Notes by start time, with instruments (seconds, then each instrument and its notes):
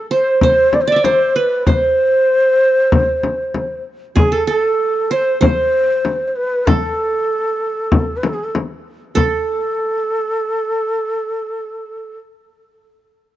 Already playing: qanun A4
0.11 qanun C5, ney C5
0.41 ney C5, qanun C5, frame drum
0.73 ney D5, frame drum
0.81 ney C5
0.87 qanun D5, ney D5
0.92 qanun E5
0.96 qanun D5
1.04 ney C5, qanun C5, frame drum
1.36 qanun B4, ney B4
1.66 qanun C5, ney C5 C#5, frame drum
2.92 frame drum
3.23 frame drum
3.54 frame drum
4.16 qanun G#4, ney G#4, frame drum
4.32 qanun A4, ney A4
4.47 qanun A4, ney A4
5.11 qanun C5, ney C#5
5.16 ney C5
5.41 qanun C5, ney C#5, frame drum
5.46 ney C5
6.05 frame drum
6.28 ney C5
6.36 ney B4
6.66 ney A4, qanun A4, frame drum
7.92 frame drum
8.17 ney B4
8.23 ney A4, frame drum
8.34 ney G#4
8.44 ney A4
8.55 frame drum
9.15 qanun A4, ney A4 B4, frame drum